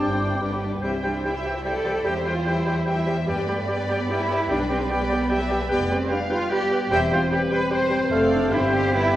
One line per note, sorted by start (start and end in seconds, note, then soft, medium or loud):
0.00 0.37 G1 soft
0.00 0.37 G2 soft
0.00 0.41 G3 soft
0.00 0.11 D4 soft
0.00 0.44 C5 soft
0.00 0.61 D5 soft
0.00 0.10 D5 soft
0.00 0.65 G5 soft
0.00 0.39 D6 soft
0.10 0.22 C4 soft
0.10 0.22 D4 soft
0.10 0.21 F4 soft
0.10 0.22 C5 soft
0.20 0.33 C4 soft
0.20 0.33 D4 soft
0.20 0.42 E4 soft
0.20 0.33 D5 soft
0.33 0.43 C4 soft
0.33 0.43 D4 soft
0.33 0.43 C5 soft
0.41 0.79 G1 soft
0.41 0.79 G2 soft
0.41 0.62 G3 soft
0.41 0.53 G3 soft
0.41 0.52 D4 soft
0.41 0.53 D4 soft
0.41 0.52 G4 soft
0.41 0.63 B4 soft
0.41 0.52 D5 soft
0.41 0.62 D6 soft
0.52 0.63 B3 soft
0.52 0.63 C4 soft
0.52 0.64 D4 soft
0.52 0.63 G4 soft
0.52 0.63 B4 soft
0.62 0.75 G3 soft
0.62 0.71 D4 soft
0.62 0.75 D4 soft
0.62 0.73 G4 soft
0.62 0.73 D5 soft
0.73 0.85 B3 soft
0.73 0.84 D4 soft
0.73 0.83 G4 soft
0.73 0.84 B4 soft
0.81 2.01 C2 soft
0.81 0.94 E3 soft
0.81 0.93 G3 soft
0.81 0.98 G3 soft
0.81 0.98 C4 soft
0.81 0.94 G4 soft
0.81 0.91 C5 soft
0.81 0.94 E5 soft
0.81 0.92 G5 soft
0.94 1.05 G3 soft
0.94 1.05 E4 soft
0.94 1.05 C5 soft
0.94 1.05 G5 soft
1.03 1.15 E3 soft
1.03 1.14 G3 soft
1.03 1.23 D4 soft
1.03 1.15 G4 soft
1.03 1.12 C5 soft
1.03 1.15 E5 soft
1.03 1.13 G5 soft
1.14 1.25 G3 soft
1.14 1.25 E4 soft
1.14 1.25 C5 soft
1.14 1.25 G5 soft
1.23 1.35 E3 soft
1.23 1.34 G3 soft
1.23 1.65 E4 soft
1.23 1.35 G4 soft
1.23 1.33 C5 soft
1.23 1.35 E5 soft
1.23 1.64 E5 soft
1.23 1.34 G5 soft
1.34 1.46 G3 soft
1.34 1.46 E4 soft
1.34 1.45 C5 soft
1.34 1.45 G5 soft
1.44 1.56 E3 soft
1.44 1.53 G3 soft
1.44 1.56 G4 soft
1.44 1.54 C5 soft
1.44 1.56 E5 soft
1.44 1.54 G5 soft
1.55 1.66 G3 soft
1.55 1.66 E4 soft
1.55 1.65 C5 soft
1.55 1.65 G5 soft
1.64 1.75 E3 soft
1.64 1.74 G3 soft
1.64 1.75 G4 soft
1.64 2.05 A4 medium
1.64 1.74 C5 soft
1.64 2.05 D5 soft
1.64 1.74 E5 soft
1.64 1.75 G5 soft
1.75 1.85 G3 soft
1.75 1.85 E4 soft
1.75 1.85 C5 soft
1.75 1.85 G5 soft
1.84 1.96 E3 soft
1.84 1.94 G3 soft
1.84 1.96 G4 soft
1.84 1.94 C5 soft
1.84 1.95 E5 soft
1.84 1.95 G5 soft
1.95 2.06 G3 soft
1.95 2.06 E4 soft
1.95 2.05 C5 soft
1.95 2.04 G5 soft
2.04 3.25 E2 soft
2.04 2.15 E3 soft
2.04 2.14 G3 soft
2.04 2.20 G3 soft
2.04 2.20 C4 soft
2.04 2.15 G4 soft
2.04 2.26 G4 medium
2.04 2.14 C5 soft
2.04 2.88 C5 soft
2.04 2.14 E5 soft
2.04 2.15 G5 soft
2.04 2.14 G5 soft
2.16 2.26 G3 soft
2.16 2.26 E4 soft
2.16 2.26 C5 soft
2.16 2.25 E5 soft
2.25 2.36 E3 soft
2.25 2.35 G3 soft
2.25 2.46 F4 medium
2.25 2.36 G4 soft
2.25 2.35 C5 soft
2.25 2.35 E5 soft
2.25 2.35 G5 soft
2.25 2.37 G5 soft
2.35 2.46 G3 soft
2.35 2.46 E4 soft
2.35 2.47 C5 soft
2.35 2.46 E5 soft
2.45 2.55 E3 soft
2.45 2.56 G3 soft
2.45 3.08 E4 medium
2.45 2.55 G4 soft
2.45 2.55 C5 soft
2.45 2.56 E5 soft
2.45 2.56 G5 soft
2.45 2.57 G5 soft
2.55 2.66 G3 soft
2.55 2.66 E4 soft
2.55 2.67 C5 soft
2.55 2.67 E5 soft
2.65 2.76 E3 soft
2.65 2.76 G3 soft
2.65 2.76 G4 soft
2.65 2.76 C5 soft
2.65 2.76 E5 soft
2.65 2.76 G5 soft
2.65 2.78 G5 soft
2.75 2.87 G3 soft
2.75 2.87 E4 soft
2.75 2.87 C5 soft
2.75 2.87 E5 soft
2.85 2.97 E3 soft
2.85 2.96 G3 soft
2.85 2.96 G4 soft
2.85 2.95 C5 soft
2.85 3.27 E5 medium
2.85 2.96 G5 soft
2.85 2.98 G5 soft
2.89 2.96 E5 soft
2.97 3.08 G3 soft
2.97 3.07 E4 soft
2.97 3.08 C5 soft
2.97 3.07 E5 soft
3.06 3.18 E3 soft
3.06 3.16 G3 soft
3.06 3.18 G4 soft
3.06 3.16 C5 soft
3.06 3.16 E5 soft
3.06 3.16 G5 soft
3.06 3.18 G5 soft
3.17 3.28 G3 soft
3.17 3.27 E4 soft
3.17 3.27 C5 soft
3.17 3.28 E5 soft
3.26 4.50 G2 soft
3.26 3.36 G3 soft
3.26 3.42 G3 soft
3.26 3.37 B3 soft
3.26 3.42 D4 soft
3.26 3.37 G4 soft
3.26 3.38 B4 soft
3.26 3.36 D5 soft
3.26 4.50 D5 medium
3.26 3.38 G5 soft
3.37 3.48 G3 soft
3.37 3.48 B4 soft
3.37 3.49 D5 soft
3.37 3.49 B5 soft
3.47 3.58 G3 soft
3.47 3.67 A3 medium
3.47 3.58 B3 soft
3.47 3.58 G4 soft
3.47 3.57 D5 soft
3.47 3.57 G5 soft
3.47 3.60 G5 soft
3.51 3.60 B4 soft
3.57 3.68 G3 soft
3.57 3.68 B4 soft
3.57 3.70 B5 soft
3.61 3.70 D5 soft
3.67 3.78 G3 soft
3.67 3.77 B3 soft
3.67 4.10 B3 medium
3.67 3.77 G4 soft
3.67 3.79 B4 soft
3.67 3.77 D5 soft
3.67 3.78 G5 soft
3.72 3.80 G5 soft
3.77 3.88 G3 soft
3.77 3.88 B4 soft
3.82 3.91 D5 soft
3.82 3.91 B5 soft
3.88 3.99 G3 soft
3.88 3.99 B3 soft
3.88 3.99 G4 soft
3.88 4.01 B4 soft
3.88 3.98 D5 soft
3.88 3.99 G5 soft
3.88 4.00 G5 soft
3.99 4.09 G3 soft
3.99 4.09 B4 soft
3.99 4.10 D5 soft
3.99 4.10 B5 soft
4.09 4.19 G3 soft
4.09 4.18 B3 soft
4.09 4.50 E4 medium
4.09 4.19 G4 soft
4.09 4.20 B4 soft
4.09 4.19 D5 soft
4.09 4.20 G5 soft
4.19 4.29 G3 soft
4.19 4.29 B4 soft
4.19 4.30 D5 soft
4.19 4.31 B5 soft
4.29 4.41 G3 soft
4.29 4.40 B3 soft
4.29 4.39 G4 soft
4.29 4.41 B4 soft
4.29 4.38 D5 soft
4.29 4.39 G5 soft
4.29 4.41 G5 soft
4.39 4.50 G3 soft
4.39 4.50 B4 soft
4.39 4.51 D5 soft
4.39 4.51 B5 soft
4.48 5.71 B1 medium
4.48 4.64 G3 soft
4.48 4.60 G3 soft
4.48 4.59 B3 soft
4.48 4.70 D4 medium
4.48 4.65 D4 soft
4.48 4.59 G4 soft
4.48 4.89 B4 soft
4.48 4.60 B4 soft
4.48 4.58 D5 soft
4.48 4.58 G5 soft
4.48 4.60 G5 soft
4.59 4.70 G3 soft
4.59 4.70 B4 soft
4.59 4.70 D5 soft
4.59 4.71 B5 soft
4.68 4.81 G3 soft
4.68 4.80 B3 soft
4.68 4.90 C4 medium
4.68 4.80 G4 soft
4.68 4.80 B4 soft
4.68 4.77 D5 soft
4.68 4.79 G5 soft
4.68 4.81 G5 soft
4.80 4.90 G3 soft
4.80 4.90 B4 soft
4.80 4.91 D5 soft
4.80 4.91 B5 soft
4.89 5.00 G3 soft
4.89 5.00 B3 soft
4.89 5.51 B3 medium
4.89 5.00 G4 soft
4.89 5.01 B4 soft
4.89 4.98 D5 soft
4.89 5.30 D5 medium
4.89 4.99 G5 soft
4.89 5.00 G5 soft
5.01 5.11 G3 soft
5.01 5.11 B4 soft
5.01 5.11 D5 soft
5.01 5.11 B5 soft
5.09 5.20 G3 soft
5.09 5.21 B3 soft
5.09 5.21 G4 soft
5.09 5.21 B4 soft
5.09 5.18 D5 soft
5.09 5.19 G5 soft
5.09 5.22 G5 soft
5.21 5.31 G3 soft
5.21 5.31 B4 soft
5.21 5.31 D5 soft
5.21 5.31 B5 soft
5.29 5.40 G3 soft
5.29 5.40 B3 soft
5.29 5.40 G4 soft
5.29 5.40 B4 soft
5.29 5.39 D5 soft
5.29 5.70 E5 medium
5.29 5.38 G5 soft
5.29 5.41 G5 soft
5.40 5.51 G3 soft
5.40 5.51 B4 soft
5.40 5.50 D5 soft
5.40 5.51 B5 soft
5.48 5.60 G3 soft
5.48 5.61 B3 soft
5.48 5.60 G4 soft
5.48 5.61 B4 soft
5.48 5.58 D5 soft
5.48 5.58 G5 soft
5.48 5.61 G5 soft
5.60 5.70 G3 soft
5.60 5.70 B4 soft
5.60 5.70 D5 soft
5.60 5.71 B5 soft
5.68 6.04 F1 medium
5.68 5.80 G3 medium
5.68 5.89 B3 medium
5.68 5.89 G4 medium
5.68 5.78 B4 medium
5.68 5.90 D5 medium
5.68 6.11 D5 medium
5.68 5.78 G5 medium
5.68 5.89 G5 medium
5.72 8.09 G3 medium
5.72 6.88 B3 medium
5.88 6.00 G3 soft
5.88 6.10 C4 medium
5.88 5.99 B4 soft
5.88 5.98 G5 soft
6.09 6.20 G3 medium
6.09 6.31 D4 medium
6.09 6.18 B4 soft
6.09 6.51 F5 medium
6.09 6.18 G5 soft
6.29 6.41 G3 soft
6.29 6.51 F4 medium
6.29 6.39 B4 soft
6.29 6.38 G5 soft
6.49 6.61 G3 medium
6.49 6.91 G4 medium
6.49 6.60 B4 medium
6.49 6.91 D5 medium
6.49 6.59 G5 medium
6.69 6.80 G3 medium
6.69 6.81 B4 medium
6.69 6.78 G5 soft
6.90 7.25 E1 medium
6.90 7.00 G3 medium
6.90 7.10 C4 medium
6.90 8.95 C4 medium
6.90 7.10 G4 medium
6.90 7.00 C5 medium
6.90 7.32 C5 medium
6.90 7.11 E5 medium
6.90 6.99 G5 medium
6.90 7.10 G5 medium
7.09 7.20 G3 soft
7.09 7.20 F4 medium
7.09 7.22 C5 medium
7.09 7.19 G5 medium
7.30 7.41 G3 medium
7.30 7.40 G4 medium
7.30 8.11 B4 medium
7.30 7.41 C5 medium
7.30 7.39 G5 medium
7.50 7.61 G3 medium
7.50 7.71 B4 medium
7.50 7.62 C5 medium
7.50 7.59 G5 medium
7.70 7.80 G3 medium
7.70 8.12 C5 medium
7.70 7.81 C5 medium
7.70 7.80 G5 medium
7.90 8.00 G3 medium
7.90 8.01 C5 medium
7.90 8.00 G5 soft
8.11 8.50 F1 medium
8.11 8.53 A3 medium
8.11 8.50 C4 medium
8.11 8.50 A4 medium
8.11 8.53 A4 medium
8.11 8.50 C5 medium
8.11 8.50 D5 medium
8.11 8.53 F5 medium
8.11 8.50 F5 medium
8.33 8.52 D4 medium
8.51 9.16 G1 medium
8.51 8.93 G3 medium
8.51 9.16 G3 medium
8.51 8.93 C4 medium
8.51 8.73 E4 medium
8.51 8.93 G4 medium
8.51 8.95 C5 medium
8.51 8.96 C5 medium
8.51 8.95 C5 medium
8.51 8.74 E5 medium
8.51 8.91 G5 medium
8.73 8.94 G4 medium
8.73 8.94 F5 medium
8.92 9.16 G3 medium
8.92 9.16 B3 soft
8.92 9.16 B3 medium
8.92 9.14 E4 medium
8.92 9.16 G4 medium
8.92 9.16 B4 medium
8.92 9.16 D5 medium
8.92 9.16 G5 soft
8.96 9.16 G5 medium